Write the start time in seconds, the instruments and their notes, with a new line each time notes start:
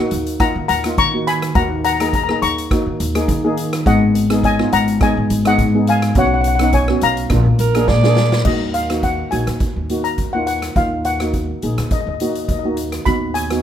Already playing: steel pan D#5 F#5
0.00 steel pan A#3 D#4 F#4
0.11 upright bass D#2, closed hi-hat
0.26 closed hi-hat
0.40 steel pan A#3 D#4 F4 F#5 A#5, kick, cross-stick, closed hi-hat
0.55 upright bass D#3
0.68 upright bass D#2, steel pan F#5 A#5, closed hi-hat
0.84 steel pan A#3 D#4 F4, cross-stick, closed hi-hat
0.98 upright bass D#3, steel pan A#5 C#6, kick, closed hi-hat
1.14 steel pan A#3 D#4 F#4
1.27 steel pan G#5 B5, closed hi-hat
1.42 cross-stick, closed hi-hat
1.55 upright bass D#2, steel pan A#3 D#4 F#4 F#5 A#5, kick, closed hi-hat
1.84 steel pan F#5 A#5, closed hi-hat
1.93 steel pan A#5
2.00 steel pan A#3 D#4 G#4 A#5, cross-stick, closed hi-hat
2.09 steel pan A#5
2.13 steel pan A#5, kick, closed hi-hat
2.24 steel pan A#5
2.29 steel pan A#3 D#4 G#4 A#5, cross-stick
2.42 upright bass D#2, steel pan A#5 C#6, closed hi-hat
2.58 closed hi-hat
2.71 steel pan A#3 D#4 F#4, kick, cross-stick, closed hi-hat
2.86 upright bass D#3
3.00 upright bass D#2, closed hi-hat
3.15 steel pan A#3 D#4 G#4, cross-stick, closed hi-hat
3.28 upright bass D#3, kick, closed hi-hat
3.45 steel pan A#3 D#4 G#4
3.57 closed hi-hat
3.73 cross-stick, closed hi-hat
3.86 upright bass G#1, steel pan B3 D#4 G#4 D#5 F#5, kick, closed hi-hat
4.15 closed hi-hat
4.30 steel pan B3 D#4 G#4, cross-stick, closed hi-hat
4.43 steel pan D#5 G#5, kick, closed hi-hat
4.59 steel pan B3 D#4 F4, cross-stick
4.73 upright bass G#1, steel pan F#5 A#5, closed hi-hat
4.88 closed hi-hat
5.01 steel pan B3 D#4 G#4 D#5 G#5, kick, cross-stick, closed hi-hat
5.17 upright bass G#2
5.30 upright bass G#1, closed hi-hat
5.45 steel pan B3 D#4 G#4 D#5 F#5, cross-stick, closed hi-hat
5.58 upright bass G#2, kick, closed hi-hat
5.75 steel pan B3 D#4 G#4
5.87 steel pan F5 G#5, closed hi-hat
6.02 cross-stick, closed hi-hat
6.15 upright bass B1, steel pan B3 C#4 F#4 C#5 F#5, kick, closed hi-hat
6.27 steel pan F#5
6.34 steel pan F#5
6.41 steel pan F#5, closed hi-hat
6.48 steel pan F#5
6.55 steel pan F#5
6.59 steel pan B3 C#4 D#4, cross-stick, closed hi-hat
6.64 steel pan F#5
6.73 steel pan C#5 G#5, kick, closed hi-hat
6.88 steel pan B3 C#4 F#4, cross-stick
7.01 upright bass B1, steel pan F5 A#5, closed hi-hat
7.17 closed hi-hat
7.30 upright bass A#1, steel pan A#3 D4 F4, kick, cross-stick, closed hi-hat
7.46 upright bass A#2
7.59 upright bass A#1, alto saxophone A#4, closed hi-hat
7.75 steel pan A#3 D4 G#4, cross-stick, closed hi-hat
7.88 upright bass A#2, alto saxophone D5, kick, snare
8.04 steel pan A#3 D4 G#4, snare
8.17 snare
8.32 snare
8.45 upright bass D#2, steel pan A#3 D#4 F#4 D#5, kick, crash
8.74 steel pan F5, closed hi-hat
8.90 steel pan A#3 D#4 F#4, cross-stick, closed hi-hat
9.03 steel pan F#5, kick, closed hi-hat
9.31 upright bass A#1, steel pan A#3 D#4 F#4 G#5, closed hi-hat
9.47 upright bass D#2, cross-stick, closed hi-hat
9.60 kick, closed hi-hat
9.76 upright bass D#2
9.90 steel pan A#3 D#4 F#4, closed hi-hat
10.04 steel pan A#5, closed hi-hat
10.18 upright bass D#2, kick, closed hi-hat
10.33 steel pan A#3 D#4 F4 F#5
10.47 steel pan F#5, closed hi-hat
10.62 cross-stick, closed hi-hat
10.76 upright bass D#2, steel pan A#3 D#4 F4 F5, kick, closed hi-hat
11.05 steel pan F#5, closed hi-hat
11.20 steel pan A#3 D#4 F#4, cross-stick, closed hi-hat
11.34 kick, closed hi-hat
11.62 upright bass A#1, steel pan A#3 D#4 G#4, closed hi-hat
11.78 upright bass D#2, cross-stick, closed hi-hat
11.91 steel pan D#5, kick, closed hi-hat
12.01 steel pan D#5
12.07 upright bass D#2, steel pan D#5
12.14 steel pan D#5
12.20 steel pan A#3 D#4 F#4 D#5, closed hi-hat
12.30 steel pan D#5
12.35 steel pan D#5, closed hi-hat
12.45 steel pan D#5, kick, closed hi-hat
12.49 upright bass D#2, steel pan D#5
12.59 steel pan D#5
12.65 steel pan A#3 D#4 F#4
12.77 closed hi-hat
12.92 cross-stick, closed hi-hat
13.05 upright bass D#2, steel pan B3 D#4 F#4 B5, kick, closed hi-hat
13.34 steel pan G#5, closed hi-hat
13.50 steel pan B3 D#4 F#4, cross-stick, closed hi-hat